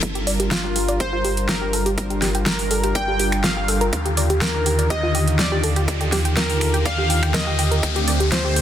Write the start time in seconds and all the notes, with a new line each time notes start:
0.03 G1 G3 D4 F4 A#4, kick, closed hi-hat, riser
0.15 G4, closed hi-hat
0.27 D5, open hi-hat
0.40 G4, closed hi-hat
0.51 F4, kick, snare, closed hi-hat
0.64 G4
0.76 G4, open hi-hat
0.88 D5, closed hi-hat
1.00 G4 C5, kick, closed hi-hat
1.13 F4
1.25 G4, open hi-hat
1.37 closed hi-hat
1.49 F4 A#4, kick, snare, closed hi-hat
1.62 G4
1.73 A4, open hi-hat
1.86 G4, closed hi-hat
1.98 kick, closed hi-hat
2.10 G4, closed hi-hat
2.22 G4, snare, open hi-hat
2.35 G5, closed hi-hat
2.46 F4 A#4, kick, snare, closed hi-hat
2.59 open hi-hat
2.71 A4, open hi-hat
2.84 G4, closed hi-hat
2.95 D5 G5, kick, closed hi-hat
3.08 G4
3.19 G4, open hi-hat
3.32 finger snap, closed hi-hat
3.44 F4 F5, kick, snare, closed hi-hat
3.57 G4
3.68 A4, open hi-hat
3.81 A#4, closed hi-hat
3.93 D#2 D3 D#3 G4, kick, closed hi-hat
4.06 G4, closed hi-hat
4.17 D5, open hi-hat
4.30 G4, closed hi-hat
4.41 F4 A#4, kick, snare, closed hi-hat
4.54 G4
4.66 G4, open hi-hat
4.79 D5, closed hi-hat
4.90 G4 D#5, kick, closed hi-hat
5.03 F4
5.15 G4, open hi-hat
5.28 closed hi-hat
5.39 F4 D5, kick, snare, closed hi-hat
5.52 G4
5.64 A4, open hi-hat
5.76 G4, closed hi-hat
5.88 kick, closed hi-hat
6.01 G4, closed hi-hat
6.12 G4, snare, open hi-hat
6.25 G5, closed hi-hat
6.37 F4 A#4, kick, snare, closed hi-hat
6.50 open hi-hat
6.61 A4, finger snap, open hi-hat
6.74 G4, closed hi-hat
6.85 D5 F5, kick, closed hi-hat
6.98 G4
7.10 G5, open hi-hat
7.23 G5, finger snap, closed hi-hat
7.34 A#4 D#5, kick, snare, closed hi-hat
7.47 G4
7.59 G5, open hi-hat
7.71 A#4, closed hi-hat
7.83 D2 D3 A3 C4, kick, closed hi-hat
7.96 G4, closed hi-hat
8.08 D5, open hi-hat
8.20 G4, closed hi-hat
8.32 F4 C5, kick, snare, closed hi-hat
8.45 G4
8.56 G4, open hi-hat